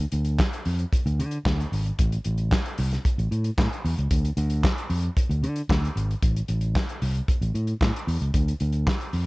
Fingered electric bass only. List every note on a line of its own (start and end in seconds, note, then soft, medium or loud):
0.12 0.39 D2 loud
0.66 0.84 F2 medium
1.06 1.21 D2 loud
1.19 1.37 D3 loud
1.45 1.63 D2 loud
1.72 1.90 G#1 loud
1.99 2.17 A1 loud
2.26 2.52 A1 loud
2.79 2.96 C2 loud
3.18 3.27 A1 loud
3.31 3.49 A2 loud
3.58 3.67 A2 loud
3.85 3.93 E2 loud
3.98 4.07 C#2 loud
4.11 4.29 D2 loud
4.37 4.64 D2 loud
4.90 5.08 F2 medium
5.29 5.44 D2 medium
5.42 5.61 D3 loud
5.69 5.87 D2 loud
5.96 6.14 G#1 loud
6.22 6.40 A1 loud
6.49 6.76 A1 loud
7.02 7.20 C2 loud
7.41 7.50 A1 loud
7.54 7.72 A2 loud
7.81 7.90 A2 loud
8.07 8.16 E2 loud
8.21 8.30 C#2 medium
8.34 8.52 D2 loud
8.61 8.87 D2 loud
9.13 9.26 F2 medium